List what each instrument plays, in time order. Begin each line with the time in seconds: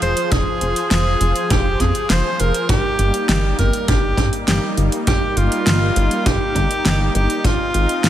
Already playing: supersaw synth F3 F4 G#4 C5
0.02 analog synth bass F1, tenor saxophone C5, closed hi-hat
0.17 closed hi-hat
0.32 analog synth bass F1, tenor saxophone G#4, kick, closed hi-hat
0.61 analog synth bass F1, closed hi-hat
0.76 closed hi-hat
0.91 analog synth bass F1, tenor saxophone G#4, snare, closed hi-hat
1.21 analog synth bass F1, closed hi-hat
1.36 closed hi-hat
1.50 analog synth bass F1, tenor saxophone G4, kick, closed hi-hat
1.80 analog synth bass F2, tenor saxophone G#4, kick, closed hi-hat
1.95 closed hi-hat
2.10 analog synth bass F1, tenor saxophone C5, snare, closed hi-hat
2.40 analog synth bass F1, tenor saxophone A#4, closed hi-hat
2.54 closed hi-hat
2.69 analog synth bass G1, supersaw synth G3 A#3 D#4, tenor saxophone G4, kick, closed hi-hat
2.99 analog synth bass G1, closed hi-hat
3.14 closed hi-hat
3.29 analog synth bass G1, tenor saxophone G4, snare, closed hi-hat
3.59 analog synth bass G1, tenor saxophone A#4, kick, closed hi-hat
3.73 closed hi-hat
3.88 analog synth bass G1, tenor saxophone G4, kick, closed hi-hat
4.17 analog synth bass G2, kick, closed hi-hat
4.33 closed hi-hat
4.48 analog synth bass G1, tenor saxophone G4, snare, closed hi-hat
4.77 analog synth bass G1, closed hi-hat
4.92 closed hi-hat
5.07 analog synth bass G1, tenor saxophone G4, kick, closed hi-hat
5.37 analog synth bass G1, tenor saxophone F4, closed hi-hat
5.52 closed hi-hat
5.66 analog synth bass G1, snare, closed hi-hat
5.96 analog synth bass G1, closed hi-hat
6.11 closed hi-hat
6.26 analog synth bass G1, tenor saxophone G4, kick, closed hi-hat
6.55 analog synth bass G1, kick, closed hi-hat
6.71 closed hi-hat
6.85 analog synth bass G1, snare, closed hi-hat
7.15 analog synth bass G1, tenor saxophone G4, closed hi-hat
7.30 closed hi-hat
7.44 analog synth bass G#1, supersaw synth G#3 C4, tenor saxophone F4, kick, closed hi-hat
7.74 analog synth bass G#1, closed hi-hat
7.89 closed hi-hat
8.04 analog synth bass G#1, tenor saxophone F4, snare, closed hi-hat